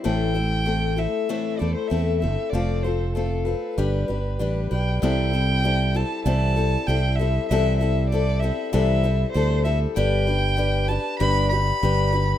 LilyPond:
<<
  \new Staff \with { instrumentName = "Violin" } { \time 4/4 \key c \major \tempo 4 = 97 g''4. e''4 d''16 c''16 e''8 e''8 | d''8 c''8 a'8 b'2 g''8 | g''4. a''8 a''4 g''8 e''8 | e''8 e''8 d''8 e''8 e''4 c''8 e''8 |
g''4. a''8 b''8 b''4. | }
  \new Staff \with { instrumentName = "Steel-string acoustic guitar" } { \time 4/4 \key c \major <a, e a c' e' a'>8 <a c' e' a'>8 <a c' e' a'>8 <a c' e' a'>8 <a, e a c' e' a'>8 <a c' e' a'>8 <a c' e' a'>8 <a c' e' a'>8 | <f a c' f' a'>8 <c' f' a'>8 <a c' f' a'>8 <c' f' a'>8 <g d' g' b'>8 <d' g' b'>8 <g d' g' b'>8 <d' g' b'>8 | <c e g c' e' a'>8 <g c' e' a'>8 <g c' e' a'>8 <g c' e' a'>8 <c e g c' e' a'>8 <g c' e' a'>8 <g c' e' a'>8 <g c' e' a'>8 | <c e g c' e' a'>8 <g c' e' a'>8 <g c' e' a'>8 <g c' e' a'>8 <c e g c' e' a'>8 <g c' e' a'>8 <g c' e' a'>8 <g c' e' a'>8 |
<g d' g' b'>8 <d' g' b'>8 <g d' g' b'>8 <d' g' b'>8 <g d' g' b'>8 <d' g' b'>8 <g d' g' b'>8 <d' g' b'>8 | }
  \new Staff \with { instrumentName = "Fingered electric bass" } { \clef bass \time 4/4 \key c \major a,,2 r8 e,16 r16 e,8 g,,16 r16 | f,,2 g,,8 g,,8 a,,8 b,,8 | c,2 c,4 c,4 | c,2 c,4 d,4 |
g,,2 g,,4 g,,4 | }
>>